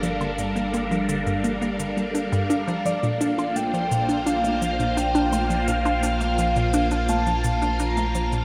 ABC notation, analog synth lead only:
X:1
M:4/4
L:1/16
Q:1/4=85
K:Bb
V:1 name="Analog synth lead"
z16 | d2 f2 g4 f4 g4 | f8 a4 b3 z |]